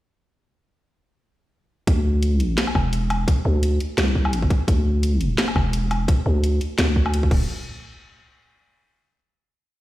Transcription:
1.87 D2, kick, closed hi-hat
2.23 closed hi-hat
2.40 closed hi-hat
2.58 snare, closed hi-hat
2.67 low woodblock
2.75 E1, kick, low woodblock
2.93 closed hi-hat
3.10 closed hi-hat, low woodblock
3.28 kick, closed hi-hat
3.45 D2
3.63 closed hi-hat
3.80 closed hi-hat
3.98 C2, snare, closed hi-hat
4.15 kick
4.25 low woodblock
4.33 closed hi-hat
4.42 kick
4.50 kick, closed hi-hat
4.68 D2, kick, closed hi-hat
5.03 closed hi-hat
5.21 closed hi-hat
5.38 snare, closed hi-hat
5.48 low woodblock
5.56 E1, kick, low woodblock
5.73 closed hi-hat
5.91 closed hi-hat, low woodblock
6.08 kick, closed hi-hat
6.26 D2
6.44 closed hi-hat
6.61 closed hi-hat
6.79 D2, snare, closed hi-hat
6.96 kick
7.06 low woodblock
7.14 closed hi-hat
7.23 kick
7.31 D1, kick, crash

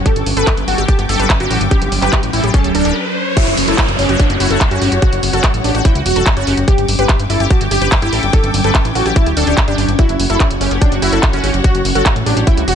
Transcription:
Already playing: F#3 C#4
0.06 G4 A4, kick, closed hi-hat, riser
0.14 G1 D6, closed hi-hat
0.26 G1 G5, open hi-hat
0.37 G1 A4 B4, closed hi-hat
0.47 kick, clap, closed hi-hat
0.57 G1, closed hi-hat
0.68 G1 F#4 A4, open hi-hat
0.78 G1 G4, closed hi-hat
0.88 G4 A5, kick, closed hi-hat
0.99 G1 G4, closed hi-hat
1.09 G1 G4 A4, open hi-hat
1.19 G1 B4, closed hi-hat
1.30 kick, clap, closed hi-hat
1.40 G1 F#4 G4, closed hi-hat
1.51 A1 A4, open hi-hat
1.61 G1, closed hi-hat
1.71 G4, kick, closed hi-hat
1.82 G1, closed hi-hat
1.92 G1, open hi-hat
2.02 G1 G4 B4, clap, closed hi-hat
2.13 kick, clap, closed hi-hat
2.23 A1, closed hi-hat
2.33 A1 E4 A4, open hi-hat
2.44 A1 G4, closed hi-hat
2.54 C#4 A5, kick, closed hi-hat
2.64 D1 G4, closed hi-hat
2.75 D1 D4 A4, open hi-hat
2.85 D1 G4, closed hi-hat
3.37 F#3 C#4 E4 F#4, kick, closed hi-hat, crash, downlifter
3.47 F#1, closed hi-hat
3.57 F#1 C#5, open hi-hat
3.68 F#1 E4 A4, closed hi-hat
3.78 kick, clap, closed hi-hat
3.88 F#1, closed hi-hat
3.99 F#1 C#4 G4, open hi-hat
4.09 F#1 F#4, closed hi-hat
4.20 D4 G5, kick, closed hi-hat
4.30 F#1 F#4 F#5, closed hi-hat
4.40 F#1 E4 F#4, open hi-hat
4.51 F#1 A4, closed hi-hat
4.61 kick, clap, closed hi-hat
4.71 F#1 C#4 F#4, closed hi-hat
4.82 G1 G4, open hi-hat
4.92 F#1, closed hi-hat
5.02 F#4, kick, closed hi-hat
5.13 F#1, closed hi-hat
5.23 F#1, open hi-hat
5.33 F#1 F#4 A4, closed hi-hat
5.44 kick, clap, closed hi-hat
5.54 A1, closed hi-hat
5.64 A1 D4 G4, open hi-hat
5.75 A1 F#4, closed hi-hat
5.85 E4 G5, kick, closed hi-hat
5.95 C#2 F#4, closed hi-hat
6.06 E1 F#4, open hi-hat
6.16 E1 A4, closed hi-hat
6.26 kick, clap, closed hi-hat
6.37 F#1 C#4 F#4, closed hi-hat
6.47 F#1 G4, open hi-hat
6.57 F#1, closed hi-hat
6.68 G4, kick, closed hi-hat
6.78 G1 D6, closed hi-hat
6.88 G1, open hi-hat
6.99 G1 G4 B4, closed hi-hat
7.09 kick, clap, closed hi-hat
7.19 G1, closed hi-hat
7.30 G1 E4 A4, open hi-hat
7.40 G1 G4, closed hi-hat
7.47 F#4 G5 A5, kick, closed hi-hat
7.61 G1 G4, closed hi-hat
7.71 G1 G4, open hi-hat
7.82 G1 B4, closed hi-hat
7.92 kick, clap, closed hi-hat
8.02 G1 E4 G4, closed hi-hat
8.13 A1 A4, open hi-hat
8.23 G1, closed hi-hat
8.33 G4 A4, kick, closed hi-hat
8.44 G1, closed hi-hat
8.54 G1, open hi-hat
8.64 G1 A4 B4, closed hi-hat
8.75 kick, clap, closed hi-hat
8.85 A1, closed hi-hat
8.95 A1 F#4 A4, open hi-hat
9.06 A1 G4, closed hi-hat
9.16 E4 A5, kick, closed hi-hat
9.26 D1 G4, closed hi-hat
9.37 D1 D4 A4, open hi-hat
9.47 D1 G4, closed hi-hat
9.57 kick, clap, closed hi-hat
9.68 G1 D4 G4, closed hi-hat
9.78 G1 G4, open hi-hat
9.89 G1, closed hi-hat
9.99 E4 F#4, kick, closed hi-hat
10.09 F#1, closed hi-hat
10.15 F#5
10.20 F#1, open hi-hat
10.30 F#1 E4 A4 C#5, closed hi-hat
10.40 kick, clap, closed hi-hat
10.51 F#1, closed hi-hat
10.61 F#1 C#4 G4, open hi-hat
10.71 F#1 G4, closed hi-hat
10.82 D4 G5, kick, closed hi-hat
10.92 F#1 F#4, closed hi-hat
11.02 F#1 E4 F#4, open hi-hat
11.13 F#1 A4, closed hi-hat
11.23 kick, clap, closed hi-hat
11.33 F#1 C#4 F#4, closed hi-hat
11.44 G1 G4, open hi-hat
11.54 F#1, closed hi-hat
11.64 F#4, kick, closed hi-hat
11.75 F#1, closed hi-hat
11.85 F#1, open hi-hat
11.95 F#1 F#4 A4, closed hi-hat
12.06 kick, clap, closed hi-hat
12.16 A1, closed hi-hat
12.26 A1 D4 G4, open hi-hat
12.37 A1 G4, closed hi-hat
12.47 E4 G5, kick, closed hi-hat
12.57 C#2 F#4, closed hi-hat
12.68 E1 F#4, open hi-hat

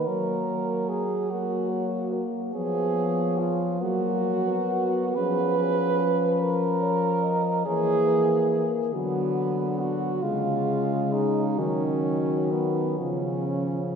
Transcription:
0.06 F#3 A#3 A#4 C#5
0.89 G#4
1.30 A#3 F#4 A#4
1.71 C#5
2.13 A#4
2.53 F3 B3 G#4 C#5
3.39 F4
3.81 F#3 A#3 F#4 A#4
4.47 B3
5.15 F3 C#4 G#4 B4
5.58 G#4
6.00 B4
6.41 A#4 C#5
6.83 C#5
7.24 D#5
7.65 E3 A#3 G#4 C#5
8.08 B4
8.52 A#4
8.93 D3 F#3 B3 F#4
9.80 F#4
10.23 C#3 G#3 F4 G#4
11.13 D#4
11.57 D#3 F#3 C#4 F#4
12.52 B3
12.99 C#3 F3 C#4 F4

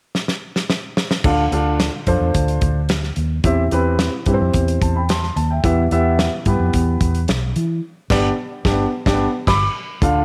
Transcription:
0.15 snare
0.28 snare
0.56 snare
0.70 snare
0.97 snare
1.11 snare
1.24 D2 D3 D4 F4 A4 F5, kick, crash
1.52 D2 D4 F4 A4 F5, closed hi-hat
1.80 snare, closed hi-hat
2.07 F2 D4 F4 A4 C5, kick, closed hi-hat
2.20 E2
2.34 D2, kick, closed hi-hat
2.48 closed hi-hat
2.61 D2, kick, closed hi-hat
2.89 snare, closed hi-hat
3.03 snare
3.16 D#2, closed hi-hat
3.44 E2 E3 C4 E4 G4 E5, kick, closed hi-hat
3.71 E2 C4 E4 G4 B4, closed hi-hat
3.99 snare, closed hi-hat
4.26 G2 C4 E4 G4 B4, kick, closed hi-hat
4.34 C5
4.41 F2
4.53 E2, kick, closed hi-hat
4.68 closed hi-hat
4.81 E2 A5, kick, closed hi-hat
4.96 G5 B5
5.09 A5 C6, snare, closed hi-hat
5.23 snare
5.36 D#2 A5, closed hi-hat
5.50 E5 G5
5.64 E2 E3 B3 E4 G4 E5, kick, closed hi-hat
5.91 E2 B3 E4 G4 E5, closed hi-hat
6.19 snare, closed hi-hat
6.45 G2 B3 E4 G4 B4, kick, closed hi-hat
6.60 F2
6.73 E2, kick, closed hi-hat
7.01 E2, kick, closed hi-hat
7.15 closed hi-hat
7.28 B1, snare, closed hi-hat
7.56 E3, closed hi-hat
8.10 G1 B3 D4 G4 D5, kick, snare, crash
8.65 G1 D4 G4, kick, snare
8.71 B3
9.06 G1 D4 G4, kick, snare
9.13 B3
9.47 G1 B5 D6, kick, snare, crash
10.02 D2 D3 D4 F4 A4 F5, kick, closed hi-hat

